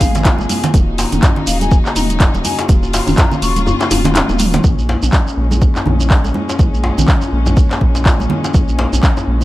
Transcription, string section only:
0.00 0.70 C3 medium
0.00 0.70 G#3 medium
0.00 0.72 G#4 medium
0.74 4.60 C#3 medium
0.74 4.60 F#3 medium
0.74 2.67 D#4 medium
2.69 4.62 F4 loud
4.64 9.44 A#2 medium
4.64 9.44 G#3 medium
4.64 9.44 C#4 medium

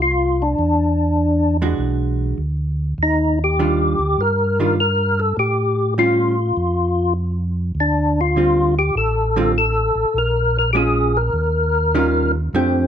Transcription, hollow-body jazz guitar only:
1.62 2.36 E3 medium
1.62 2.36 G#3 medium
1.62 2.36 D4 medium
1.62 2.36 F#4 medium
3.59 3.96 D#3 soft
3.59 3.96 G3 medium
3.59 3.96 D4 medium
3.59 3.96 F4 medium
4.60 4.76 D#3 medium
4.60 4.77 G3 medium
4.60 4.77 D4 soft
4.60 4.77 F4 medium
5.98 6.34 G3 medium
5.98 6.35 C#4 medium
5.98 6.35 F4 medium
8.36 8.73 D3 soft
8.36 8.73 G3 soft
8.36 8.74 C4 soft
8.36 8.74 F4 soft
9.36 9.53 D3 medium
9.36 9.54 G3 medium
9.36 9.54 C4 medium
9.36 9.54 F4 medium
10.75 11.11 G#3 medium
10.75 11.12 C#4 medium
10.75 11.12 F4 medium
11.95 12.31 D#3 medium
11.95 12.31 G3 medium
11.95 12.31 C#4 medium
11.95 12.32 F4 medium
12.54 12.87 F3 medium
12.54 12.87 A3 medium
12.54 12.87 D4 medium
12.54 12.87 G4 medium

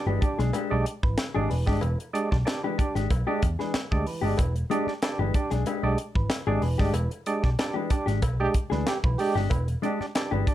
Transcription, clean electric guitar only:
0.07 0.24 G#3 medium
0.07 0.23 D4 medium
0.07 0.23 G4 medium
0.39 0.52 G#3 medium
0.39 0.51 D4 medium
0.39 0.51 G#4 medium
0.54 0.71 G#3 medium
0.54 0.72 D4 medium
0.54 0.72 G4 medium
1.35 1.51 G#3 medium
1.35 1.51 D4 medium
1.35 1.51 G#4 medium
1.67 1.80 G#3 medium
1.67 1.80 D4 medium
1.67 1.79 G4 medium
2.64 2.80 G#3 medium
2.64 2.80 D4 medium
2.64 2.79 G4 medium
2.95 3.08 G#3 medium
2.95 3.08 D4 medium
2.95 3.08 G4 medium
3.27 3.44 G#3 medium
3.27 3.43 D4 medium
3.27 3.43 G4 medium
3.59 3.72 G#3 medium
3.59 3.72 D4 medium
3.59 3.71 G#4 medium
4.21 4.39 G#3 medium
4.21 4.39 D4 medium
4.21 4.38 G4 medium
4.70 4.88 G#3 medium
4.70 4.88 D4 medium
4.70 4.88 G4 medium
5.19 5.36 G#3 medium
5.19 5.35 D4 medium
5.19 5.35 G4 medium
5.51 5.64 G#3 medium
5.51 5.64 D4 medium
5.51 5.63 G#4 medium
5.66 5.84 G#3 medium
5.66 5.84 D4 medium
5.66 5.85 G4 medium
6.47 6.64 G#3 medium
6.47 6.64 D4 medium
6.47 6.63 G#4 loud
6.78 6.92 G#3 soft
6.78 6.92 D4 soft
6.78 6.91 G4 medium
7.74 7.92 G#3 medium
7.74 7.91 D4 medium
7.74 7.91 G4 medium
8.06 8.20 G#3 medium
8.06 8.20 D4 medium
8.06 8.19 G4 medium
8.70 8.87 G#3 medium
8.70 8.87 D4 medium
8.70 8.87 G#4 medium
9.35 9.52 G#3 medium
9.35 9.52 D4 medium
9.35 9.51 G4 medium
9.82 10.00 G#3 medium
9.82 10.01 D4 medium
9.82 10.01 G4 medium
10.31 10.48 G#3 medium
10.31 10.47 D4 medium
10.31 10.47 G4 medium

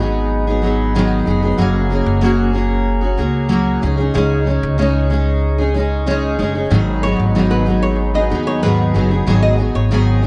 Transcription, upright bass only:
0.00 1.23 G#1 loud
1.27 1.56 F1 medium
1.58 2.03 F#1 loud
2.06 3.14 F#1 loud
3.19 3.79 C#2 medium
3.83 4.12 C#2 loud
4.15 4.59 C#2 loud
4.63 6.35 C#2 loud
6.39 6.69 F#1 medium
6.71 7.15 G#1 loud
7.19 8.27 G#1 loud
8.31 8.91 D#2 loud
8.95 9.25 F#1 loud
9.27 9.71 G#1 loud
9.75 10.27 G#1 loud

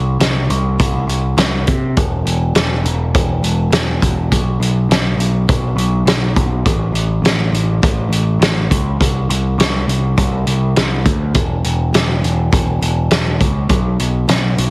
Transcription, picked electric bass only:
0.00 0.18 C2 medium
0.20 0.47 C2 medium
0.50 0.77 C2 medium
0.80 1.06 C2 medium
1.07 1.35 C2 medium
1.37 1.65 C2 loud
1.68 1.95 C3 medium
1.97 2.24 E1 medium
2.25 2.53 E1 medium
2.55 2.82 E1 medium
2.84 3.11 E1 medium
3.14 3.41 E1 medium
3.43 3.70 E1 medium
3.71 3.99 E1 medium
4.02 4.29 E1 medium
4.31 4.59 B1 medium
4.60 4.87 B1 medium
4.89 5.17 B1 medium
5.17 5.45 B1 medium
5.49 5.75 B1 medium
5.76 6.04 B1 medium
6.05 6.33 B1 medium
6.36 6.63 B1 medium
6.65 6.92 A1 medium
6.92 7.21 A1 medium
7.22 7.50 A1 medium
7.51 7.79 A1 medium
7.83 8.08 A1 medium
8.09 8.37 A1 medium
8.40 8.67 A1 medium
8.70 8.97 C#2 medium
9.00 9.27 C2 medium
9.29 9.56 C2 medium
9.58 9.85 C2 medium
9.87 10.15 C2 medium
10.17 10.44 C2 loud
10.47 10.74 C2 medium
10.77 11.04 C2 medium
11.05 11.33 D2 medium
11.34 11.61 E1 medium
11.64 11.91 E1 medium
11.93 12.20 E1 medium
12.23 12.50 E1 medium
12.52 12.79 E1 medium
12.82 13.09 E1 medium
13.11 13.38 E1 medium
13.41 13.68 C#2 medium
13.69 13.97 B1 medium
14.00 14.27 B1 medium
14.28 14.55 B1 medium
14.58 14.70 B1 medium

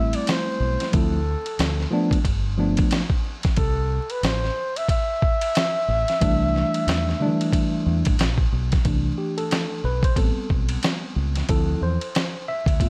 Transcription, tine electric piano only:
0.00 0.88 G3 medium
0.00 0.88 A3 medium
0.00 0.89 C4 medium
0.00 0.89 E4 medium
0.92 1.18 F3 medium
0.92 1.18 A3 medium
0.92 1.19 C4 medium
0.92 1.19 E4 medium
1.91 2.17 F3 medium
1.91 2.17 A3 medium
1.91 2.17 B3 medium
1.91 2.18 D4 loud
2.57 2.99 F3 medium
2.57 2.99 A3 medium
2.57 2.99 B3 medium
2.57 3.00 D4 medium
6.21 7.14 E3 medium
6.21 7.15 G3 medium
6.21 7.15 A3 medium
6.21 7.15 D4 medium
7.20 7.28 D3 medium
7.20 8.14 G3 medium
7.20 8.14 A3 medium
7.20 8.15 D4 medium
7.26 8.17 E3 medium
8.85 9.80 E3 medium
8.85 9.80 A3 soft
8.85 9.80 D4 medium
9.18 9.38 G4 medium
9.38 9.85 A4 medium
9.85 10.04 B4 medium
10.05 10.18 C5 loud
10.17 11.45 G3 medium
10.17 11.45 B3 soft
10.17 11.45 C4 medium
10.17 10.48 A4 medium
11.49 11.95 F3 medium
11.49 11.95 C4 medium
11.49 11.96 E4 medium
11.49 11.83 A4 medium
11.83 12.50 C5 medium
12.48 12.89 E5 loud
12.81 12.89 A3 soft
12.81 12.89 B3 soft
12.81 12.89 F4 medium

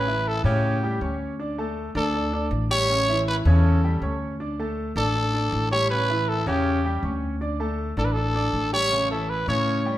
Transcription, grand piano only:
0.08 0.38 E3 medium
0.08 0.39 E4 medium
0.08 0.39 E5 medium
0.45 0.76 C#3 medium
0.45 0.76 C#4 loud
0.45 0.76 C#5 loud
0.83 0.98 G3 medium
0.83 0.98 G4 medium
0.83 0.99 G5 medium
1.02 1.32 C#4 medium
1.02 1.32 C#5 medium
1.02 1.33 C#6 medium
1.39 1.55 D4 medium
1.39 1.55 D5 medium
1.39 1.55 D6 medium
1.58 1.89 A3 medium
1.58 1.89 A4 medium
1.58 1.89 A5 medium
1.95 2.11 D4 medium
1.95 2.11 D5 medium
1.95 2.11 D6 medium
2.14 2.29 D4 medium
2.14 2.30 D5 medium
2.14 2.30 D6 medium
2.33 2.64 D4 medium
2.33 2.64 D5 medium
2.33 2.64 D6 medium
2.71 2.86 G3 medium
2.71 2.86 G4 medium
2.71 2.86 G5 medium
2.89 3.05 C#3 medium
2.89 3.05 C#4 medium
2.89 3.05 C#5 medium
3.09 3.39 E3 medium
3.09 3.39 E4 medium
3.09 3.40 E5 medium
3.46 3.77 C#3 loud
3.46 3.77 C#4 medium
3.46 3.77 C#5 loud
3.84 3.99 G3 medium
3.84 3.99 G4 medium
3.84 4.00 G5 medium
4.03 4.33 C#4 medium
4.03 4.33 C#5 medium
4.03 4.34 C#6 medium
4.40 4.55 D4 medium
4.40 4.55 D5 medium
4.40 4.56 D6 medium
4.59 4.90 A3 medium
4.59 4.90 A4 medium
4.59 4.90 A5 medium
4.96 5.12 D4 medium
4.96 5.12 D5 medium
4.96 5.12 D6 medium
5.16 5.31 D4 medium
5.16 5.31 D5 medium
5.16 5.31 D6 medium
5.34 5.65 D4 medium
5.34 5.65 D5 medium
5.34 5.65 D6 medium
5.72 5.87 G3 medium
5.72 5.87 G4 medium
5.72 5.88 G5 medium
5.91 6.06 C#3 medium
5.91 6.06 C#4 medium
5.91 6.06 C#5 medium
6.09 6.40 E3 medium
6.09 6.40 E4 medium
6.09 6.40 E5 medium
6.47 6.77 C#3 loud
6.47 6.78 C#4 loud
6.47 6.78 C#5 loud
6.84 7.00 G3 medium
6.84 7.00 G4 medium
6.84 7.00 G5 medium
7.03 7.34 C#4 medium
7.03 7.34 C#5 medium
7.03 7.34 C#6 medium
7.41 7.56 D4 medium
7.41 7.56 D5 medium
7.41 7.57 D6 medium
7.60 7.91 A3 medium
7.60 7.91 A4 medium
7.60 7.91 A5 medium
7.97 8.13 D4 medium
7.97 8.13 D5 medium
7.97 8.13 D6 medium
8.16 8.31 D4 medium
8.16 8.32 D5 medium
8.16 8.32 D6 medium
8.35 8.66 D4 medium
8.35 8.66 D5 medium
8.35 8.66 D6 medium
8.72 8.88 G3 medium
8.72 8.88 G4 medium
8.72 8.88 G5 medium
8.92 9.07 C#3 medium
8.92 9.07 C#4 medium
8.92 9.07 C#5 medium
9.10 9.41 E3 medium
9.10 9.41 E4 medium
9.10 9.41 E5 medium
9.48 9.79 C#3 medium
9.48 9.79 C#4 loud
9.48 9.79 C#5 medium
9.85 9.98 G3 medium
9.85 9.98 G4 medium
9.85 9.98 G5 medium

